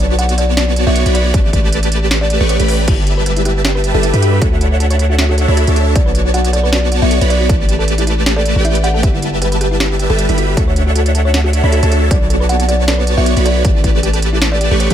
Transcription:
Already playing: B1 B3 F#4 C#5 D5 A5
0.19 F#5, closed hi-hat
0.29 closed hi-hat
0.38 D5, closed hi-hat
0.57 D5, snare, closed hi-hat
0.76 closed hi-hat
0.87 B1 B3 F#4 C#5 D5 E5 C#6
0.96 closed hi-hat
1.06 B1 B3 F#4 C#5 D5 B5, closed hi-hat
1.15 D5, closed hi-hat
1.34 A3 G4 B4 D5 A5, kick, closed hi-hat
1.53 kick, closed hi-hat
1.73 closed hi-hat
1.83 closed hi-hat
1.92 closed hi-hat
2.11 snare, closed hi-hat
2.21 D5
2.30 closed hi-hat
2.40 A1 A3 G4 B4 D5 C#6
2.49 C#5, closed hi-hat
2.60 A1 A3 G4 B4 D5 B5, closed hi-hat
2.68 B4, open hi-hat
2.88 G1 G3 E4 G4 B4 E5, kick, closed hi-hat, crash
3.07 G4, closed hi-hat
3.17 B4
3.26 B4, closed hi-hat
3.37 E4, closed hi-hat
3.45 E4 G4, closed hi-hat
3.65 G4, snare, closed hi-hat
3.75 B4
3.84 closed hi-hat
3.94 G1 G3 E4 G4 A4 B4 E5 A5
4.03 E4, closed hi-hat
4.14 G2 G3 G4 B4 E5 B5, closed hi-hat
4.22 F#4 G4, closed hi-hat
4.33 B4
4.42 D2 D4 C#5 E5, kick, closed hi-hat
4.52 F#4
4.61 F#4, closed hi-hat
4.80 A4, closed hi-hat
4.90 C#5, closed hi-hat
4.99 closed hi-hat
5.10 F#4
5.19 F#4, snare, closed hi-hat
5.29 F#4
5.38 A4, closed hi-hat
5.48 D2 D4 A4 C#5 E5 B5
5.57 F#4, closed hi-hat
5.67 D2 D4 F#4 A4 C#5 E5 A5, closed hi-hat
5.76 F#4, closed hi-hat
5.95 B1 B3 F#4 A4 C#5 D5 A5, kick, closed hi-hat
6.06 B4
6.15 closed hi-hat
6.25 F#4
6.34 F#4 F#5, closed hi-hat
6.45 closed hi-hat
6.53 A4 D5, closed hi-hat
6.64 B4
6.72 D5, snare, closed hi-hat
6.83 F#4
6.92 F#4, closed hi-hat
7.02 B1 B3 F#4 C#5 D5 E5 C#6
7.11 A4, closed hi-hat
7.21 B1 B3 F#4 B4 C#5 D5 B5, closed hi-hat
7.30 D5, closed hi-hat
7.40 F#4
7.49 A1 A3 E4 G4 B4 A5, kick, closed hi-hat
7.69 G4, closed hi-hat
7.79 A4
7.88 closed hi-hat
7.98 E4, closed hi-hat
8.07 E4, closed hi-hat
8.26 G4, snare, closed hi-hat
8.36 A4 D5
8.46 closed hi-hat
8.56 A1 A3 G4 A4 B4 D5 G5
8.65 E4 E5, closed hi-hat
8.75 B4, closed hi-hat
8.84 D5 F#5, closed hi-hat
8.94 A4
9.03 G1 G3 G4 B4 E5 A5, kick, closed hi-hat
9.14 E4
9.22 E4, closed hi-hat
9.42 G4 B4, closed hi-hat
9.52 B4, closed hi-hat
9.61 G4, closed hi-hat
9.71 E4
9.80 E4 G4, snare, closed hi-hat
9.99 G4, closed hi-hat
10.10 G1 G3 G4 A4 B4 E5 A5
10.19 closed hi-hat
10.29 G1 G3 E4 G4 B4 E5 B5, closed hi-hat
10.38 E4 F#4, closed hi-hat
10.57 D2 D4 A4 C#5 F#5, kick, closed hi-hat
10.68 C#5
10.76 closed hi-hat
10.87 F#4
10.96 F#4, closed hi-hat
11.06 closed hi-hat
11.15 A4, closed hi-hat
11.25 C#5
11.34 snare, closed hi-hat
11.44 F#4
11.53 F#4, closed hi-hat
11.63 D2 D4 A4 C#5 E5 B5
11.72 F#4 A4, closed hi-hat
11.83 D2 D4 A4 C#5 E5 A5, closed hi-hat
11.92 F#4, closed hi-hat
12.02 F#4
12.11 B1 B3 F#4 C#5 D5 A5, kick, closed hi-hat
12.30 A4, closed hi-hat
12.40 B4
12.49 F#5, closed hi-hat
12.60 F#4, closed hi-hat
12.68 F#4 D5, closed hi-hat
12.87 A4 D5, snare, closed hi-hat
12.98 B4
13.07 closed hi-hat
13.17 B1 B3 F#4 C#5 D5 E5 C#6
13.26 F#4, closed hi-hat
13.37 B1 B3 F#4 C#5 D5 B5, closed hi-hat
13.45 A4 D5, closed hi-hat
13.56 B4
13.65 A1 A3 G4 B4 D5 A5, kick, closed hi-hat
13.75 E4
13.84 E4, kick, closed hi-hat
14.03 G4, closed hi-hat
14.13 A4, closed hi-hat
14.22 closed hi-hat
14.33 E4
14.42 E4, snare, closed hi-hat
14.52 D5
14.61 G4, closed hi-hat
14.71 A1 A3 G4 A4 B4 D5 C#6
14.80 C#5, closed hi-hat
14.90 A2 A3 E4 G4 B4 D5 B5, closed hi-hat

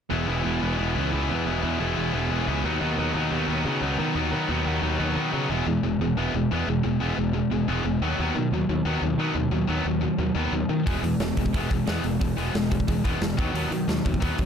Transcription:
0.10 E1 E2 B2 E3 G#3 B3 E4
0.27 E1 E2 B2 E3 G#3 B3 E4
0.43 E1 E2 B2 E3 G#3 B3 E4
0.61 E1 E2 B2 E3 G#3 B3 E4
0.78 E1 E2 B2 E3 G#3 B3 E4
0.95 C#2 E2 B2 E3 G#3 B3 E4
1.12 C#2 E2 B2 E3 G#3 B3 E4
1.29 E2 B2 E3 G#3 B3 E4
1.45 E1 E2 B2 E3 G#3 B3 E4
1.62 E2 B2 E3 G#3 B3 E4
1.79 E1 E2 B2 E3 G#3 B3 E4
1.96 E1 E2 B2 E3 G#3 B3 E4
2.13 E1 E2 B2 E3 G#3 B3 E4
2.29 E1 E2 B2 E3 G#3 B3 E4
2.47 C#2 E2 B2 E3 G#3 B3 E4
2.64 D#2 B2 D#3 F#3 B3 D#4
2.80 D#2 B2 D#3 F#3 B3 D#4
2.96 D#2 B2 D#3 F#3 B3 D#4
3.14 D#2 B2 D#3 F#3 B3 D#4
3.30 D#2 B2 D#3 F#3 B3 D#4
3.48 D#2 B2 D#3 F#3 B3 D#4
3.65 B2 C#3 D#3 F#3 B3 D#4
3.81 C#2 B2 D#3 F#3 B3 D#4
3.98 B2 D#3 F#3 B3 D#4
4.15 D#2 B2 D#3 F#3 B3 D#4
4.32 B2 D#3 F#3 B3 D#4
4.49 D#2 B2 D#3 F#3 B3 D#4
4.65 D#2 B2 D#3 F#3 B3 D#4
4.82 D#2 B2 D#3 F#3 B3 D#4
4.98 D#2 B2 D#3 F#3 B3 D#4
5.15 B2 D#3 F#3 B3 D#4
5.32 B2 C#3 D#3 F#3 B3 D#4
5.49 E1 E2 B2 E3 G#3 B3
5.67 E2 B2 E3 G#3
5.83 E1 E2 B2 E3 G#3
6.00 E1 E2 B2 E3 G#3
6.17 E1 E2 B2 E3 G#3 B3
6.34 E1 E2 B2 E3 G#3
6.51 E2 B2 E3 G#3 B3
6.68 E1 E2 B2 E3 G#3
6.83 E1 E2 B2 E3 G#3
7.00 E1 E2 B2 E3 G#3 B3
7.16 E1 E2 B2 E3 G#3
7.33 E2 B2 E3 G#3
7.50 E1 E2 B2 E3 G#3
7.68 E1 E2 B2 E3 G#3 B3
7.85 E1 E2 B2 E3 G#3
8.02 D#2 B2 D#3 F#3 B3
8.19 D#2 B2 D#3 F#3 B3
8.36 B2 D#3 F#3
8.52 D#2 B2 D#3 F#3
8.69 D#2 B2 D#3 F#3
8.85 D#2 B2 D#3 F#3 B3
9.02 D#2 B2 D#3 F#3
9.18 B2 D#3 F#3 B3
9.35 D#2 B2 D#3 F#3
9.51 D#2 B2 D#3 F#3
9.68 D#2 B2 D#3 F#3 B3
9.85 D#2 B2 D#3 F#3
10.01 B2 D#3 F#3
10.19 D#2 B2 D#3 F#3
10.35 D#2 B2 D#3 F#3 B3
10.52 D#2 B2 D#3 F#3
10.69 B2 D#3 F#3
10.86 E1 E2 B2 E3 G#3 B3, kick, open hi-hat
11.03 E2 B2 E3 G#3, open hi-hat
11.20 E1 E2 B2 E3 G#3, snare, open hi-hat
11.37 E1 E2 B2 E3 G#3, kick, open hi-hat
11.46 kick
11.53 E1 E2 B2 E3 G#3, kick, open hi-hat
11.57 B3
11.69 E1 E2 B2 E3 G#3, kick, open hi-hat
11.86 E2 B2 E3 G#3 B3, snare, open hi-hat
12.02 E1 E2 B2 E3 G#3, open hi-hat
12.19 E1 E2 B2 E3 G#3, kick, open hi-hat
12.36 E1 E2 B2 E3 G#3 B3, open hi-hat
12.53 E1 E2 B2 E3 G#3, snare, open hi-hat
12.71 E2 B2 E3 G#3, kick, open hi-hat
12.80 kick
12.87 E1 E2 B2 E3 G#3, kick, open hi-hat
13.04 E1 E2 B2 E3 G#3 B3, kick, open hi-hat
13.21 E1 E2 B2 E3 G#3, snare, open hi-hat
13.37 D#2 B2 D#3 F#3 B3, kick, open hi-hat
13.53 D#2 B2 D#3 F#3 B3, open hi-hat
13.71 B2 D#3 F#3, open hi-hat
13.88 D#2 B2 D#3 F#3, snare, open hi-hat
14.05 D#2 B2 D#3 F#3, kick, open hi-hat
14.14 kick
14.20 D#2 B2 D#3 F#3 B3, kick, open hi-hat
14.38 D#2 B2 D#3 F#3, kick, open hi-hat

